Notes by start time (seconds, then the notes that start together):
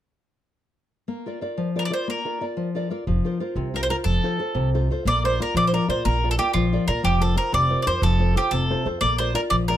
1.08 A#3
1.26 F4 A#4 D5
1.41 F4 A#4 D5
1.58 F3
1.76 F4 A#4 D5
1.85 D5
1.90 F4 A#4 C5 D5
2.08 A#3 A#4
2.25 F4 A#4 D5
2.41 F4 A#4 D5
2.57 F3
2.75 F4 A#4 D5
2.90 F4 A#4 D5
3.07 F1 F3
3.25 F4 A#4 C5
3.40 F4 A#4 C5
3.56 C2 C3
3.74 F4 A#4 C5
3.83 C5
3.90 F4 A#4 C5
4.04 F1 F3 A4
4.24 F4 A4 C5
4.39 F4 A4 C5
4.55 C2 C3
4.74 F4 A4 C5
4.91 F4 A4 C5
5.05 A#1 A#3 D5
5.24 F4 A#4 C5 D5
5.40 F4 A#4 D5
5.55 A#1 F3 D5
5.67 C5
5.73 F4 A#4 D5
5.88 A#2 F4 A#4 C5 D5
6.05 A#1 A#3 A#4
6.24 F4 A#4 D5
6.31 A4
6.38 F4 G4 A#4 D5
6.54 A#1 F3 F4
6.73 F4 A#4 D5
6.88 A#2 F4 A#4 D5
7.03 F1 F3 G4
7.20 F4 A4 A#4 C5
7.35 F4 A#4 C5
7.52 F1 C3 D5
7.70 F4 A#4 C5
7.82 F4 D5
7.87 F2 A#4 C5
8.02 F1 F3 A4
8.19 F4 A4 C5
8.36 F4 G4 A4 C5
8.51 F1 C3 A4
8.70 F4 A4 C5
8.85 F2 F4 A4 C5
9.01 A#1 A#3 D5
9.18 F4 A#4 C5 D5
9.34 F4 A#4 D5
9.50 A#1 F3 D5
9.68 F4 A#4 D5